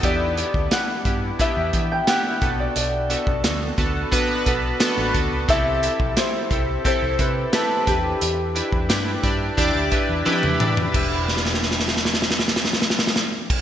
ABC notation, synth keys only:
X:1
M:4/4
L:1/8
Q:1/4=88
K:Em
V:1 name="Synth keys"
[B,DEG] [B,DEG] [B,DEG] [B,DEG] [B,DEG] [B,DEG] [B,DEG] [B,DFA]- | [B,DFA] [B,DFA] [B,DFA] [B,DFA] [B,DFB] [B,DFA] [B,DFA] [B,DFA] | [CEGA] [CEGA] [CEGA] [CEGA] [CEGA] [CEGA] [CEGB] [DEGB]- | [DEGB] [DEGB] [DEGB] [DEGd] [DEGd] [DEGBe] [DEGBg] [DEGdb] |
[DEGB]8 |]